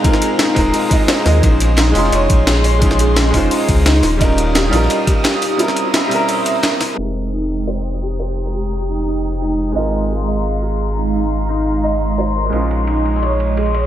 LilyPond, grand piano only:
\new Staff \with { instrumentName = "Grand piano" } { \time 4/4 \key f \minor \tempo 4 = 173 <aes c' ees' f' bes'>4. <aes c' ees' f' bes'>4 <aes c' ees' f' ees''>16 r8. <aes c' ees' f' ees''>16 r16 | <aes des' ees' f' c''>4. <aes des' ees' f' c'''>2~ <aes des' ees' f' c'''>8 | <aes des' ees' f' c'''>4. <aes des' ees' f' c''>2~ <aes des' ees' f' c''>8 | <g des' ees' f' bes'>4. <g des' ees' f' bes'>2~ <g des' ees' f' bes'>8 |
<g c' des' e' bes'>4. <g c' des' e' bes'>2~ <g c' des' e' bes'>8 | <aes c' ees' g' bes'>1~ | <aes c' ees' g' bes'>1 | <aes c' ees' f' bes'>1~ |
<aes c' ees' f' bes'>1 | <aes des' ees' f' c'''>1 | }